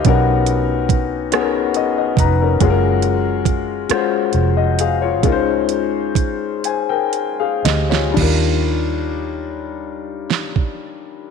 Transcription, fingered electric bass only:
0.05 B1
2.17 F1
2.61 F#1
3.90 muted fingered electric bass stroke
4.34 F1
5.24 C#2
7.65 D2
8.17 D#2

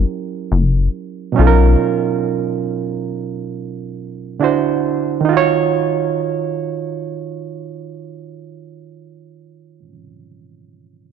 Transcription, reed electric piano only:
Already playing: F#3 C#4 E4 G4 A#4
1.32 B2 F#3 C#4
1.38 D#4 F4 A4
1.47 A#4
4.40 D3 D4 E4 F#4
4.44 C5
5.21 D#3
5.25 D#4
5.29 F4
5.33 F#4 C#5

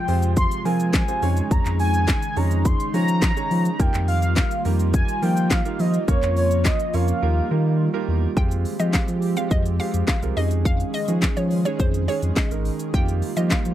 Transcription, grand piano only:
0.08 C4 F4 G4 G#4 C5
0.65 C4 F4 G#4 A#4
1.08 C4 F4 G4 G#4 C5
1.22 G#3 C#4 D#4 G#4 C#5
2.37 G#3 C#4 D#4 G#4 C#5
2.94 G#3 C#4 D#4 G#4 C#5
3.37 G#3 C#4 D#4 G#4 C#5
3.79 A#3 D#4 F4 G4 A#4
4.65 A#3 D#4 F4 G4 A#4
5.22 A#3 D#4 F4 G4 A#4
5.65 A#3 D#4 F4 G4 A#4
6.08 A#3 C#4 F4 A#4 C#5
6.94 A#3 C#4 F4 A#4 C#5
7.22 A#3 D#4 F4 G4 A#4
7.51 A#3 D#4 F4 G4 A#4
7.93 A#3 D#4 F4 G4 A#4
8.37 G#3 C4 F4 G4
8.79 G#3 C4 F4 G4
9.37 G#3 C4 F4 G4
9.79 G#3 C4 F4 G4
10.22 G#3 C4 F4 A#4
10.36 G#3 C#4 D#4 G#4
11.08 G#3 C#4 D#4 G#4
11.65 G#3 C#4 D#4 G#4
12.08 G#3 C#4 D#4 G#4
12.51 G#3 C#4 D#4 A#4
12.94 A#3 D#4 F4 G4
13.36 A#3 D#4 F4 G4

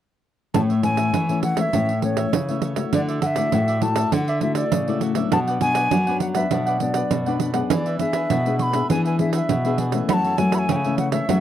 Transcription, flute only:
0.54 A5
0.84 G#5
1.43 F#5
1.57 E5 F#5
2.03 C#5
2.94 D5
3.23 E5 F#5
3.82 A5
4.13 F#5
4.29 E5
4.42 E5
4.56 D5
5.33 A5
5.62 G#5
6.22 F#5
6.36 E5
6.81 D5
7.71 D5 E5
7.99 E5
8.59 B5 C#6
8.91 G#5
9.06 G#5
9.20 E5
9.34 F#5
9.38 E5
10.10 A5 B5
10.38 G#5
10.55 G#5 B5
10.72 G5 G#5
10.98 F#5
11.13 E5

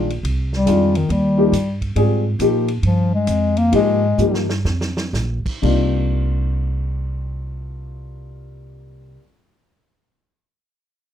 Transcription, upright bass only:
Already playing: A#1
0.23 C2
0.67 F2
1.09 D#2
1.52 G2
1.96 G#2
2.39 A#2
2.83 G2
3.27 F2
3.73 G#2
4.18 G2
4.65 F2
5.13 A#1
5.45 muted upright bass stroke
5.63 C2

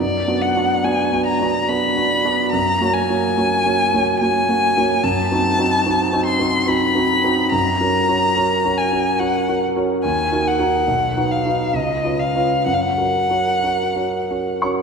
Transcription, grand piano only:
0.00 F#2
0.27 B3 D4 F#4
0.56 B3 D4 F#4
0.84 B3 D4 F#4
1.12 B3 D4 F#4
1.41 B3 D4 F#4
1.68 B3 D4 F#4
1.96 B3 D4 F#4
2.24 B3 D4 F#4
2.53 F#2
2.81 A#3 C#4 F#4
3.09 A#3 C#4 F#4
3.37 A#3 C#4 F#4
3.65 A#3 C#4 F#4
3.94 A#3 C#4 F#4
4.21 A#3 C#4 F#4
4.49 A#3 C#4 F#4
4.77 A#3 C#4 F#4
5.04 F#2
5.31 C4 D#4 F#4
5.59 C4 D#4 F#4
5.86 C4 D#4 F#4
6.12 C4 D#4 F#4
6.39 C4 D#4 F#4
6.67 C4 D#4 F#4
6.95 C4 D#4 F#4
7.24 C4 D#4 F#4
7.52 F#2
7.80 C#4 F#4 A#4
8.08 C#4 F#4 A#4
8.36 C#4 F#4 A#4
8.65 C#4 F#4 A#4
8.92 C#4 F#4 A#4
9.20 C#4 F#4 A#4
9.48 C#4 F#4 A#4
9.76 C#4 F#4 A#4
10.04 D#2
10.32 D#4 F#4 A#4
10.59 D#4 F#4 A#4
10.87 B1
11.16 D#4 F#4 B4
11.45 D#4 F#4 B4
11.74 C#2
12.04 C#4 F4 B4
12.35 C#4 F4 B4
12.66 F#2
12.97 C#4 F#4 A#4
13.30 C#4 F#4 A#4
13.63 C#4 F#4 A#4
13.96 C#4 F#4 A#4
14.31 C#4 F#4 A#4
14.62 C#4 F#4 A#4 C#5 C#6

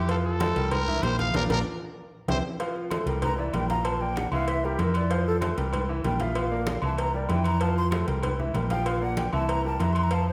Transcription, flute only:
3.23 A#5
3.38 D5
3.54 G5
3.69 A#5
3.85 A5
4.01 G5
4.17 F#5
4.33 F5
4.48 E5
4.65 G4
4.81 A#4
4.97 D5
5.12 C5
5.27 A4
6.06 G5
6.21 E5
6.38 F5
6.84 A5
6.99 A#5
7.15 D5
7.30 G5
7.46 A#5
7.62 A5
7.77 C6
8.71 G5
8.87 F5
9.03 F#5
9.18 G5
9.34 A5
9.50 A#5
9.66 A5
9.82 A#5
9.93 C6
10.03 A#5
10.14 A5
10.29 C5

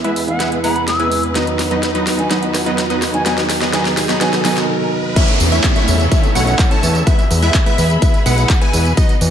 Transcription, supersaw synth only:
0.04 G#3 B3 E4 B4 E5
0.40 G#3 B3 E4 B4 E5
0.64 G#3 B3 E4 B4 F#5
1.00 G#3 B3 E4 B4 G#5
1.35 F#3 B3 D#4 B4 D#5
1.71 F#3 B3 D#4 B4 D#5
1.95 F#3 B3 D#4 B4 D#5
2.31 F#3 B3 D#4 B4 D#5
2.66 F#3 B3 D#4 B4 D#5
2.90 F#3 B3 D#4 B4 D#5
3.26 F#3 B3 D#4 B4 D#5
3.62 F#3 B3 D#4 B4 D#5
3.73 F#3 B3 D#4 B4 D#5
4.09 F#3 B3 D#4 B4 D#5
4.21 F#3 B3 D#4 B4 D#5
4.45 F#3 B3 D#4 B4 D#5
5.16 A3 C#4 E4 C#5 E5
5.52 A3 C#4 E4 C#5 E5
5.76 A3 C#4 E4 C#5 E5
6.12 A3 C#4 E4 C#5 E5
6.35 A3 C#4 E4 C#5 F#5
6.71 A3 C#4 E4 C#5 A5
7.07 G#3 B3 E4 B4 E5
7.43 G#3 B3 E4 B4 E5
7.66 G#3 B3 E4 B4 E5
8.02 G#3 B3 E4 B4 E5
8.26 G#3 B3 E4 B4 F#5
8.62 G#3 B3 E4 B4 G#5
8.97 F#3 B3 D#4 B4 D#5

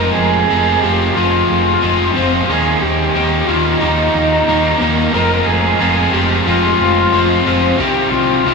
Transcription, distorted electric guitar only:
Already playing: F3 G#3 C4 F4
0.50 F3 G#3 C4 F4
0.84 F3 G#3 C4 F4
1.16 F3 G#3 C4 F4
1.82 F3 G#3 C4 F4
2.15 F3 G#3 C4 F4
2.49 D#3 G3 A#3 D#4
3.15 D#3 G3 A#3 D#4
3.48 D#3 G3 A#3 D#4
3.80 D#3 G3 A#3 D#4
4.48 D#3 G3 A#3 D#4
4.80 D#3 G3 A#3 D#4
5.13 F3 G#3 C4 F4
5.79 F3 G#3 C4 F4
6.13 F3 G#3 C4 F4
6.46 F3 G#3 C4 F4
7.13 F3 G#3 C4 F4
7.46 F3 G#3 C4 F4
7.78 C3 D#3 G3 C4 G4
8.45 C3 D#3 G3 C4 G4

